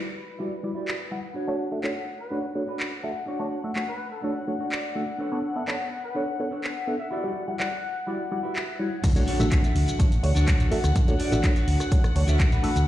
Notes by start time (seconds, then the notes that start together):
Already playing: B4
0.03 muted clean electric guitar stroke
0.15 muted clean electric guitar stroke
0.39 G3 E4 F#4 G4 D5
0.63 G3 E4 F#4 D5, muted clean electric guitar stroke
0.75 E4 F#4 G4 D5
0.88 clap
1.10 G3 E4 F#4 F#5, muted clean electric guitar stroke
1.34 D4 F#4 C#5 F#5
1.47 A3 D4 F#4 C#5
1.71 A3 D4 F#4 E5
1.83 A3 D4 F#4 C#5, clap
1.95 muted clean electric guitar stroke
2.06 muted clean electric guitar stroke
2.20 B4
2.30 A3 D4 F#4 C#5
2.54 A3 D4 F#4 C#5, muted clean electric guitar stroke
2.67 D4 F#4 B4
2.80 clap
3.02 A3 D4 F#4 E5, muted clean electric guitar stroke
3.26 D4 F#4 C#5
3.40 A3 D4 F#4 C#5
3.64 A3 D4 F#4 E5
3.75 A3 D4 F#4 C#5, clap
3.87 B4, muted clean electric guitar stroke
3.98 muted clean electric guitar stroke
4.12 A4
4.22 A3 D4 F#4 A4 C#5
4.46 A3 D4 F#4 C#5, muted clean electric guitar stroke
4.59 D4 F#4 C#5
4.72 D5, clap
4.95 A3 D4 F#4 E5, muted clean electric guitar stroke
5.18 D4 A4 B4 C#5
5.32 B3 D4 A4 C#5
5.56 B3 D4 A4 E5
5.67 B3 D4 A4 C#5, clap
5.79 muted clean electric guitar stroke
5.91 muted clean electric guitar stroke
6.04 B4
6.15 B3 D4 A4 B4 C#5
6.39 B3 D4 A4 C#5, muted clean electric guitar stroke
6.51 D4 A4 B4 C#5
6.64 clap
6.87 B3 D4 A4 E5, muted clean electric guitar stroke
7.00 E5
7.11 E4 F#4 G4 D5 E5
7.24 G3 E4 F#4 D5
7.47 G3 E4 F#4 F#5
7.59 G3 E4 F#4 D5 F#5, clap
7.71 muted clean electric guitar stroke
7.83 muted clean electric guitar stroke
8.07 G3 E4 F#4 G4 D5
8.31 G3 E4 F#4 D5 F#5, muted clean electric guitar stroke
8.43 E4 F#4 G4 B4
8.56 E5, clap
8.79 G3 E4 F#4 C#5 F#5, muted clean electric guitar stroke
9.04 D2 F#5, kick, closed hi-hat, crash, impact, shaker
9.15 A3 D4 F#4 C#5, closed hi-hat, shaker
9.27 D4 F#4 A4 C#5, open hi-hat
9.39 A1 A3 D4 F#4 E5, closed hi-hat, shaker
9.51 A3 D4 F#4 C#5, kick, clap, closed hi-hat, shaker
9.63 D4 F#4 A4 E5, closed hi-hat, shaker
9.75 D2, open hi-hat
9.88 closed hi-hat, shaker
9.99 A1 A3 D4 F#4 C#5, kick, closed hi-hat, shaker
10.12 closed hi-hat, shaker
10.23 D2 A3 D4 F#4 C#5, open hi-hat
10.35 D2 D4 F#4 A4 C#5, closed hi-hat, shaker
10.48 kick, clap, closed hi-hat, shaker
10.59 A1 D4 F#4 A4 C#5, closed hi-hat, shaker
10.71 A3 D4 F#4 E5, muted fingered electric bass stroke, open hi-hat
10.84 D2, cross-stick, closed hi-hat, shaker
10.96 kick, closed hi-hat, shaker
11.07 A3 D4 F#4 C#5, closed hi-hat, shaker
11.18 D4 F#4 A4 D5, open hi-hat
11.31 A1 A3 D4 F#4 E5, closed hi-hat, shaker
11.43 A3 D4 F#4 C#5, kick, clap, closed hi-hat, shaker
11.55 D4 F#4 A4 C#5, closed hi-hat, shaker
11.67 D2, open hi-hat
11.80 cross-stick, closed hi-hat, shaker
11.91 A1 A3 D4 F#4 C#5, kick, closed hi-hat, shaker
12.04 muted fingered electric bass stroke, cross-stick, closed hi-hat, shaker
12.15 D2 A3 D4 F#4 C#5, open hi-hat
12.27 D2 D4 F#4 A4 E5, closed hi-hat, shaker
12.40 kick, clap, closed hi-hat, shaker
12.51 A1 D4 F#4 A4 B4, closed hi-hat, shaker
12.63 A3 D4 F#4 E5, muted fingered electric bass stroke, open hi-hat
12.76 D2, closed hi-hat, shaker